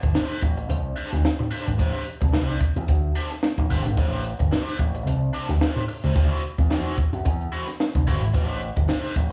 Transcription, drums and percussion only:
0.03 kick, closed hi-hat
0.15 snare
0.30 closed hi-hat
0.42 kick, closed hi-hat
0.58 closed hi-hat
0.70 closed hi-hat
0.97 closed hi-hat
1.13 snare, closed hi-hat
1.25 snare
1.52 open hi-hat
1.67 closed hi-hat
1.79 kick, closed hi-hat
2.06 closed hi-hat
2.22 kick, closed hi-hat
2.33 snare
2.49 closed hi-hat
2.61 kick, closed hi-hat
2.76 closed hi-hat
2.88 kick, closed hi-hat
3.15 closed hi-hat
3.31 snare, closed hi-hat
3.43 snare
3.58 kick
3.70 kick, open hi-hat
3.86 closed hi-hat
3.97 kick, closed hi-hat
4.13 closed hi-hat
4.24 closed hi-hat
4.40 kick, closed hi-hat
4.53 snare
4.67 closed hi-hat
4.79 kick, closed hi-hat
4.95 closed hi-hat
5.07 closed hi-hat
5.34 closed hi-hat
5.50 snare, closed hi-hat
5.61 snare
5.89 open hi-hat
6.04 closed hi-hat
6.16 kick, closed hi-hat
6.43 closed hi-hat
6.58 kick, closed hi-hat
6.71 snare
6.86 closed hi-hat
6.98 kick, closed hi-hat
7.13 closed hi-hat
7.26 kick, closed hi-hat
7.41 closed hi-hat
7.53 closed hi-hat
7.68 snare, closed hi-hat
7.80 snare
7.95 kick, closed hi-hat
8.07 kick, open hi-hat
8.23 closed hi-hat
8.34 kick, closed hi-hat
8.61 closed hi-hat
8.77 kick, closed hi-hat
8.89 snare
9.04 closed hi-hat
9.16 kick, closed hi-hat

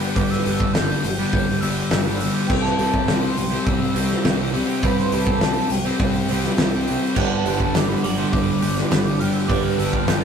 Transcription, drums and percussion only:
0.16 kick, open hi-hat
0.32 snare
0.46 open hi-hat
0.60 kick
0.75 snare, open hi-hat
1.04 open hi-hat
1.33 kick, open hi-hat
1.62 open hi-hat
1.91 snare, open hi-hat
2.20 open hi-hat
2.50 kick, crash
2.65 snare
2.79 open hi-hat
2.94 kick
3.08 snare, open hi-hat
3.37 open hi-hat
3.66 kick, open hi-hat
3.96 open hi-hat
4.10 snare
4.25 snare, open hi-hat
4.54 open hi-hat
4.83 kick, open hi-hat
4.98 snare
5.12 open hi-hat
5.27 kick
5.41 snare, open hi-hat
5.70 open hi-hat
5.99 kick, open hi-hat
6.28 open hi-hat
6.44 snare
6.58 snare, open hi-hat
6.87 open hi-hat
7.16 kick, crash
7.46 open hi-hat
7.60 kick
7.74 snare, open hi-hat, tambourine
8.04 open hi-hat
8.33 kick, open hi-hat
8.62 open hi-hat
8.78 snare
8.91 snare, open hi-hat, tambourine
9.21 open hi-hat
9.50 kick, open hi-hat
9.79 open hi-hat
9.93 kick
10.08 snare, open hi-hat, tambourine

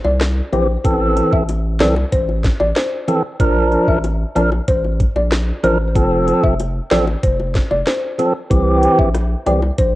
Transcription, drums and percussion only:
0.05 high bongo
0.21 cross-stick, snare, closed hi-hat, high bongo
0.53 closed hi-hat, low bongo
0.85 kick, closed hi-hat
1.17 closed hi-hat, high bongo
1.33 kick
1.49 closed hi-hat, high bongo
1.80 cross-stick, snare, closed hi-hat, low bongo
1.96 high bongo
2.12 kick, closed hi-hat
2.29 high bongo
2.44 kick, snare, closed hi-hat
2.60 high bongo
2.76 cross-stick, snare, closed hi-hat, high bongo
3.08 closed hi-hat, low bongo
3.40 kick, closed hi-hat
3.72 closed hi-hat, high bongo
3.88 kick
4.04 closed hi-hat, high bongo
4.36 closed hi-hat, low bongo
4.52 high bongo
4.68 kick, closed hi-hat
4.84 high bongo
5.00 kick, closed hi-hat
5.16 high bongo
5.32 cross-stick, snare, closed hi-hat, high bongo
5.64 closed hi-hat, low bongo
5.95 kick, closed hi-hat
6.27 closed hi-hat, high bongo
6.43 kick
6.59 closed hi-hat, high bongo
6.91 cross-stick, snare, closed hi-hat, low bongo
7.07 high bongo
7.23 kick, closed hi-hat
7.40 high bongo
7.55 kick, snare, closed hi-hat
7.71 high bongo
7.87 cross-stick, snare, closed hi-hat, high bongo
8.19 closed hi-hat, low bongo
8.51 kick, closed hi-hat
8.83 closed hi-hat
8.99 kick
9.14 cross-stick, closed hi-hat, high bongo
9.46 closed hi-hat, low bongo
9.62 high bongo
9.78 kick, closed hi-hat

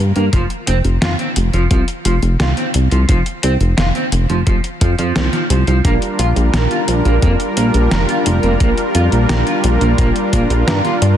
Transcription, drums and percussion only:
0.16 closed hi-hat
0.33 kick, closed hi-hat
0.50 closed hi-hat
0.67 closed hi-hat
0.85 closed hi-hat
1.02 snare, closed hi-hat
1.19 closed hi-hat
1.36 closed hi-hat
1.53 closed hi-hat
1.71 kick, closed hi-hat
1.88 closed hi-hat
2.05 closed hi-hat
2.23 closed hi-hat
2.40 snare, closed hi-hat
2.57 closed hi-hat
2.74 closed hi-hat
2.91 closed hi-hat
3.09 kick, closed hi-hat
3.26 closed hi-hat
3.43 closed hi-hat
3.61 closed hi-hat
3.78 snare, closed hi-hat
3.95 closed hi-hat
4.12 closed hi-hat
4.30 closed hi-hat
4.47 kick, closed hi-hat
4.64 closed hi-hat
4.81 kick, closed hi-hat
4.99 closed hi-hat
5.16 snare, closed hi-hat
5.33 snare, closed hi-hat
5.50 closed hi-hat
5.67 closed hi-hat
5.85 kick, closed hi-hat
6.02 closed hi-hat
6.19 closed hi-hat
6.36 closed hi-hat
6.54 snare, closed hi-hat
6.71 closed hi-hat
6.88 closed hi-hat
7.05 closed hi-hat
7.22 kick, closed hi-hat
7.40 closed hi-hat
7.57 closed hi-hat
7.74 closed hi-hat
7.91 snare, closed hi-hat
8.09 closed hi-hat
8.26 closed hi-hat
8.43 closed hi-hat
8.60 kick, closed hi-hat
8.78 closed hi-hat
8.95 closed hi-hat
9.12 closed hi-hat
9.29 snare, closed hi-hat
9.47 closed hi-hat
9.64 closed hi-hat
9.81 closed hi-hat
9.98 kick, closed hi-hat
10.16 closed hi-hat
10.33 kick, closed hi-hat
10.50 closed hi-hat
10.68 snare, closed hi-hat
10.85 snare, closed hi-hat
11.02 closed hi-hat

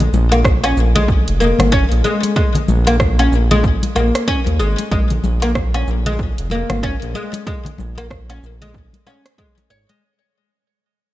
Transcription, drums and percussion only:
0.00 closed hi-hat, low conga, cabasa
0.13 muted conga, high conga, cabasa
0.32 closed hi-hat, high conga, cabasa, low woodblock
0.45 kick, cross-stick, cabasa
0.64 closed hi-hat, cabasa, low woodblock
0.77 cabasa
0.96 closed hi-hat, low conga, cabasa
1.08 kick, cabasa
1.28 closed hi-hat, cabasa
1.41 muted conga, cabasa
1.59 cross-stick, closed hi-hat, high conga, low conga, cabasa, low woodblock
1.72 kick, cabasa
1.92 closed hi-hat, cabasa
2.05 high conga, cabasa
2.23 closed hi-hat, muted conga, cabasa
2.36 kick, cabasa
2.55 closed hi-hat, low conga, cabasa
2.68 muted conga, high conga, cabasa
2.87 closed hi-hat, high conga, cabasa, low woodblock
3.00 kick, cross-stick, cabasa
3.19 closed hi-hat, cabasa, low woodblock
3.33 cabasa
3.51 closed hi-hat, low conga, cabasa
3.64 kick, muted conga, cabasa
3.83 closed hi-hat, high conga, cabasa
3.95 muted conga, cabasa, low woodblock
4.15 cross-stick, closed hi-hat, cabasa
4.28 kick, cabasa
4.46 closed hi-hat, muted conga, cabasa
4.60 cabasa
4.78 closed hi-hat, muted conga, cabasa
4.91 kick, cabasa
5.10 closed hi-hat, low conga, cabasa
5.24 muted conga, high conga, cabasa
5.42 closed hi-hat, high conga, cabasa, low woodblock
5.55 kick, cross-stick, cabasa
5.74 closed hi-hat, cabasa, low woodblock
5.88 cabasa
6.06 closed hi-hat, low conga, cabasa
6.19 kick, cabasa
6.38 closed hi-hat, cabasa
6.50 muted conga, cabasa
6.70 cross-stick, closed hi-hat, high conga, low conga, cabasa, low woodblock
6.83 kick, cabasa
7.02 closed hi-hat, cabasa
7.14 high conga, cabasa
7.33 closed hi-hat, muted conga, cabasa
7.47 kick, cabasa
7.65 closed hi-hat, low conga, cabasa
7.78 muted conga, high conga, cabasa
7.97 closed hi-hat, high conga, cabasa, low woodblock
8.10 kick, cross-stick, cabasa
8.30 closed hi-hat, cabasa, low woodblock
8.44 cabasa
8.62 closed hi-hat, low conga, cabasa
8.74 kick, muted conga, cabasa
8.93 closed hi-hat, high conga, cabasa
9.06 muted conga, cabasa, low woodblock
9.26 cross-stick, closed hi-hat, cabasa
9.38 kick, cabasa
9.58 closed hi-hat, muted conga, cabasa
9.71 cabasa
9.89 closed hi-hat, muted conga, cabasa

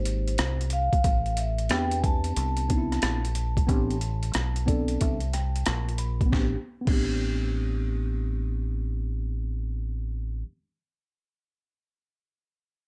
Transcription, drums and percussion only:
0.05 closed hi-hat
0.28 closed hi-hat
0.38 cross-stick, closed hi-hat
0.61 closed hi-hat
0.70 closed hi-hat
0.93 kick, closed hi-hat
1.04 kick, closed hi-hat
1.26 closed hi-hat
1.37 closed hi-hat
1.58 closed hi-hat
1.69 cross-stick, closed hi-hat
1.91 closed hi-hat
2.04 kick, closed hi-hat
2.24 closed hi-hat
2.36 closed hi-hat
2.57 closed hi-hat
2.70 kick, closed hi-hat
2.92 cross-stick, closed hi-hat
3.02 cross-stick, closed hi-hat
3.25 closed hi-hat
3.35 closed hi-hat
3.57 kick, closed hi-hat
3.69 kick, closed hi-hat
3.91 closed hi-hat
4.01 closed hi-hat
4.23 closed hi-hat
4.34 cross-stick, closed hi-hat
4.56 closed hi-hat
4.68 kick, closed hi-hat
4.88 closed hi-hat
5.01 kick, closed hi-hat
5.20 closed hi-hat
5.33 cross-stick, closed hi-hat
5.56 closed hi-hat
5.66 cross-stick, closed hi-hat
5.89 closed hi-hat
5.98 closed hi-hat
6.21 kick, closed hi-hat
6.33 kick, snare
6.87 kick, crash

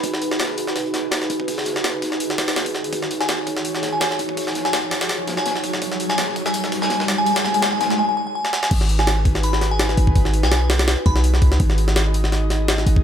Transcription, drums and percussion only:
0.03 kick, closed hi-hat, open hi-hat
0.14 snare
0.22 closed hi-hat, open hi-hat
0.31 snare
0.39 snare, closed hi-hat, open hi-hat
0.49 snare
0.58 closed hi-hat, open hi-hat
0.67 snare
0.76 snare, closed hi-hat, open hi-hat
0.86 closed hi-hat
0.94 snare, closed hi-hat, open hi-hat
1.11 snare, closed hi-hat, open hi-hat
1.21 snare, closed hi-hat
1.30 closed hi-hat, open hi-hat
1.40 kick
1.48 kick, open hi-hat
1.58 snare
1.65 snare, closed hi-hat, open hi-hat
1.76 snare
1.84 snare, closed hi-hat, open hi-hat
2.02 kick, snare, closed hi-hat, open hi-hat
2.12 snare
2.20 closed hi-hat, open hi-hat
2.30 snare
2.38 snare, closed hi-hat, open hi-hat
2.48 snare, open hi-hat
2.56 snare, closed hi-hat, open hi-hat
2.66 kick, open hi-hat
2.74 snare, closed hi-hat
2.84 open hi-hat
2.93 kick, closed hi-hat, open hi-hat
3.02 snare
3.11 closed hi-hat, open hi-hat
3.21 snare
3.28 snare, closed hi-hat, open hi-hat
3.38 snare
3.47 kick, closed hi-hat, open hi-hat
3.57 snare
3.65 closed hi-hat, open hi-hat
3.75 snare, closed hi-hat
3.83 snare, closed hi-hat, open hi-hat
4.01 snare, closed hi-hat, open hi-hat
4.11 snare, closed hi-hat
4.19 closed hi-hat, open hi-hat
4.29 kick
4.37 kick, open hi-hat
4.47 snare
4.55 snare, closed hi-hat, open hi-hat
4.65 snare
4.73 snare, closed hi-hat, open hi-hat
4.91 snare, closed hi-hat, open hi-hat
5.01 snare, open hi-hat
5.09 snare, closed hi-hat, open hi-hat
5.28 kick, snare, closed hi-hat, open hi-hat
5.37 snare
5.46 snare, closed hi-hat, open hi-hat
5.55 snare
5.64 kick, closed hi-hat, open hi-hat
5.73 snare
5.82 kick, closed hi-hat, open hi-hat
5.92 snare
6.00 closed hi-hat, open hi-hat
6.10 snare
6.18 snare, closed hi-hat, open hi-hat
6.28 snare
6.36 kick, closed hi-hat, open hi-hat
6.46 snare
6.54 closed hi-hat, open hi-hat
6.64 snare, closed hi-hat
6.72 kick, snare, closed hi-hat, open hi-hat
6.82 snare
6.90 snare, closed hi-hat, open hi-hat
7.00 snare, closed hi-hat
7.08 snare, closed hi-hat, open hi-hat
7.26 open hi-hat
7.36 snare, open hi-hat
7.44 snare, closed hi-hat
7.54 open hi-hat
7.62 snare, closed hi-hat, open hi-hat
7.80 snare, closed hi-hat, open hi-hat
7.90 snare
8.45 snare
8.53 snare
8.63 snare
8.71 kick, open hi-hat, crash
8.81 snare
8.89 open hi-hat
8.99 snare
9.07 snare, open hi-hat
9.25 kick, open hi-hat
9.35 snare
9.43 open hi-hat
9.53 snare
9.61 snare, open hi-hat
9.79 snare, open hi-hat
9.89 snare
9.97 open hi-hat
10.07 kick
10.15 kick, open hi-hat
10.25 snare
10.34 open hi-hat
10.43 snare
10.52 snare, open hi-hat
10.70 snare, open hi-hat
10.79 snare, open hi-hat
10.88 snare, open hi-hat
11.06 kick, open hi-hat
11.16 snare
11.24 open hi-hat
11.34 snare
11.42 kick, open hi-hat
11.52 snare
11.60 kick, open hi-hat
11.70 snare
11.78 open hi-hat
11.88 snare
11.96 snare, open hi-hat
12.14 open hi-hat
12.24 snare
12.32 snare, open hi-hat
12.50 snare, open hi-hat
12.68 snare, open hi-hat
12.78 snare
12.87 open hi-hat
12.96 kick

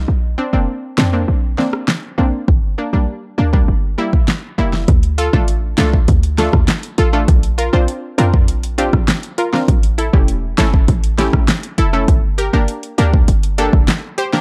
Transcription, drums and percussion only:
0.98 snare, clap
1.58 snare
1.73 cross-stick
1.88 snare, clap
2.48 kick
3.53 kick
4.13 kick
4.28 snare, clap
4.73 snare
4.88 kick, closed hi-hat
5.03 closed hi-hat
5.18 closed hi-hat
5.33 kick
5.48 closed hi-hat
5.78 snare, clap, closed hi-hat
5.93 kick
6.08 kick, closed hi-hat
6.23 closed hi-hat
6.38 snare, closed hi-hat
6.53 kick, cross-stick
6.68 snare, clap, closed hi-hat
6.83 closed hi-hat
6.98 closed hi-hat
7.28 kick, closed hi-hat
7.43 closed hi-hat
7.59 closed hi-hat
7.88 closed hi-hat
8.18 closed hi-hat
8.34 kick
8.48 closed hi-hat
8.63 closed hi-hat
8.78 closed hi-hat
8.93 kick, cross-stick
9.08 snare, clap, closed hi-hat
9.23 closed hi-hat
9.38 closed hi-hat
9.54 snare
9.68 kick, closed hi-hat
9.83 closed hi-hat
9.98 closed hi-hat
10.14 kick
10.28 closed hi-hat
10.58 snare, clap, closed hi-hat
10.74 kick
10.88 kick, closed hi-hat
11.04 closed hi-hat
11.18 snare, closed hi-hat
11.33 kick, cross-stick
11.48 snare, clap, closed hi-hat
11.63 closed hi-hat
11.78 closed hi-hat
12.08 kick, closed hi-hat
12.38 closed hi-hat
12.68 closed hi-hat
12.83 closed hi-hat
12.98 closed hi-hat
13.14 kick
13.28 closed hi-hat
13.43 closed hi-hat
13.58 closed hi-hat
13.73 kick
13.88 snare, clap, closed hi-hat
14.18 closed hi-hat
14.33 snare

